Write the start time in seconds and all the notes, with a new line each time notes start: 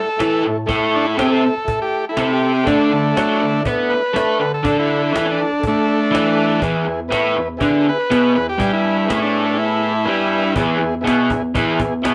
Already playing: A4
0.17 E3 A3 E4 A4, cajon slap
0.44 A2
0.66 A2 A3 E4 A4, cajon bass
0.95 D4
1.06 E4
1.13 C3 A3 E4 A4
1.18 C4 G4, cajon slap
1.26 G#4
1.32 A4
1.58 cajon slap
1.65 A3 E4 A4, cajon bass
1.82 G4
2.09 A3 E4
2.13 C3 A4, cajon slap
2.18 C4
2.33 G4
2.63 D3 A3 D4 A4, cajon bass
2.93 D3
3.12 A3 D4 E4
3.17 F#3 F#4, cajon slap
3.41 D3
3.53 cajon slap
3.60 A3 D4 E4
3.65 B3 B4, cajon bass
3.90 B4, muted overdriven electric guitar stroke
4.12 A3 D4 A4, cajon slap
4.39 D3 B4
4.54 A4, cajon slap
4.63 D3 A3 D4 A4, cajon bass
4.79 E4
5.11 E3 A3 D4 E4 A4
5.16 cajon slap
5.25 C#4
5.31 D4
5.53 cajon slap
5.59 A3 D4 A4
5.64 A3, cajon bass
5.68 D4
6.11 E3 A3 D4 E4 A4, cajon slap
6.52 cajon slap
6.59 E2 E3 B3 E4 G#4, cajon bass
6.86 E2
7.08 A2 A3 B3 E4 B4
7.12 cajon slap
7.36 E2
7.57 D3 B3 E4 G#4, cajon bass
7.62 D4
7.87 B4, muted overdriven electric guitar stroke
8.09 B2 B3 E4 G#4, cajon slap
8.34 E2 B4
8.49 G4
8.57 G2 G3 B3 E4 G#5, cajon bass
8.73 E4
9.05 A2 A3 B3 E4 G#4
9.10 cajon slap
9.16 C#4
9.22 D4
9.50 B3 E4 G#4
9.59 E4
10.04 G2 G3 B3 E4 G#5
10.55 E2 E3 B3 E4 G#4, cajon bass
10.79 E2
10.95 cajon slap
11.01 B2 B3 E4 G#4
11.07 cajon slap
11.30 E2, cajon bass
11.54 E2 E3 B3 E4 G#4, cajon bass
11.80 E2, cajon bass
12.02 B2 B3 E4 G#4, cajon slap